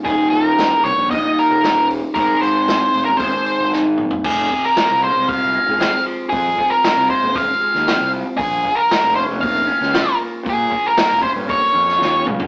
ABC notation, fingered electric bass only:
X:1
M:4/4
L:1/16
Q:1/4=116
K:Ab
V:1 name="Fingered electric bass" clef=bass
E,,, z E,,,4 C,, B,,,2 z2 E,,,4- E,,, | A,,, z A,,,4 F,,, E,,,2 z2 A,,,4- A,,, | F,,,2 z3 C,,2 C,,4 A,,,2 z3 | F,,2 z3 C,, z E,,,2 z2 E,,2 C,,2 z |
B,,,2 z3 F,,,2 F,,,4 D,,2 z3 | B,,2 z3 F,,, z G,,,2 z F,,2 E,,2 D,,2 |]